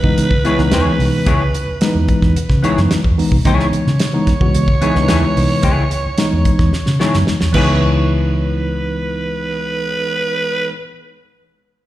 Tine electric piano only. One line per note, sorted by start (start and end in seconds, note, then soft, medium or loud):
0.03 0.30 E3 loud
0.03 0.30 G#3 medium
0.03 0.30 B3 medium
0.03 0.30 D#4 loud
0.44 0.53 E3 medium
0.44 0.53 G#3 medium
0.44 0.54 B3 medium
0.44 0.54 E4 loud
0.58 1.28 E3 loud
0.58 1.29 G#3 medium
0.58 1.29 B3 loud
0.58 1.29 D#4 loud
1.81 1.88 D#3 medium
1.81 2.34 G#3 medium
1.81 2.34 B3 medium
1.81 2.34 D#4 loud
1.88 2.37 E3 loud
2.63 2.98 E3 loud
2.63 2.98 G#3 medium
2.63 2.99 B3 medium
2.63 2.99 D#4 loud
3.17 3.35 E3 medium
3.17 3.35 G#3 medium
3.17 3.35 B3 medium
3.17 3.36 D#4 loud
3.45 3.89 E3 medium
3.45 3.89 G#3 medium
3.45 3.89 B3 medium
3.45 3.89 D#4 loud
4.13 4.31 E3 loud
4.13 4.31 G#3 loud
4.13 4.31 B3 loud
4.13 4.31 D#4 loud
4.40 4.67 E3 loud
4.40 4.67 G#3 medium
4.40 4.67 B3 medium
4.40 4.68 F#4 loud
4.81 4.90 E3 loud
4.81 4.91 G#3 medium
4.81 4.91 B3 loud
4.81 4.91 D#4 loud
4.95 5.66 E3 loud
4.95 5.66 G#3 medium
4.95 5.66 B3 medium
4.95 5.02 D4 medium
5.03 5.69 D#4 loud
6.18 6.71 E3 medium
6.18 6.71 G#3 medium
6.18 6.71 B3 medium
6.18 6.71 D#4 loud
6.99 7.35 E3 medium
6.99 7.35 G#3 medium
6.99 7.35 B3 medium
6.99 7.35 D#4 loud
7.53 10.69 E3 medium
7.53 10.71 G#3 medium
7.53 10.72 B3 medium
7.57 10.74 D#4 medium